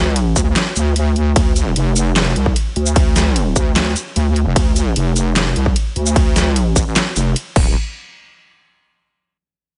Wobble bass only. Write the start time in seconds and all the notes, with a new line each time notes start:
Already playing: D2
0.36 D2
0.76 D2
1.36 D2
1.76 F1
2.36 C2
2.76 D2
3.56 D2
4.16 D2
4.46 F1
4.56 D2
4.96 F1
5.56 C2
5.96 D2
6.76 A1
7.16 F1
7.56 D1